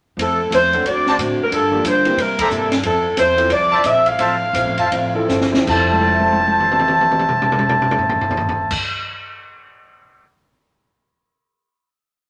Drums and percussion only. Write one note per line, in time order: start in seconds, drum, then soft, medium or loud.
0.19 ride medium
0.52 hi-hat pedal medium
0.52 ride medium
0.73 ride soft
0.86 ride medium
1.06 snare soft
1.19 hi-hat pedal medium
1.19 ride medium
1.52 ride medium
1.85 hi-hat pedal medium
1.85 ride medium
2.05 ride soft
2.18 ride medium
2.39 kick medium
2.39 ride medium
2.51 hi-hat pedal soft
2.72 snare medium
2.72 ride soft
2.83 ride medium
3.17 hi-hat pedal medium
3.17 ride medium
3.38 ride soft
3.50 ride medium
3.84 hi-hat pedal soft
3.84 ride medium
4.06 ride soft
4.19 ride medium
4.54 hi-hat pedal medium
4.54 ride medium
4.78 ride soft
4.92 ride medium
5.29 snare soft
5.29 hi-hat pedal medium
5.41 snare medium
5.54 snare medium
5.67 kick loud
5.67 crash medium
5.93 high tom soft
6.00 high tom soft
6.07 high tom soft
6.20 high tom soft
6.33 high tom medium
6.40 high tom soft
6.47 high tom medium
6.60 mid tom soft
6.72 mid tom medium
6.79 mid tom medium
6.88 mid tom medium
7.01 mid tom medium
7.12 mid tom medium
7.19 mid tom medium
7.29 mid tom medium
7.42 mid tom medium
7.52 mid tom medium
7.59 mid tom medium
7.69 mid tom medium
7.82 mid tom medium
7.91 mid tom medium
7.99 floor tom medium
8.10 floor tom medium
8.21 floor tom medium
8.31 floor tom medium
8.37 floor tom medium
8.49 floor tom medium
8.71 kick loud
8.71 crash medium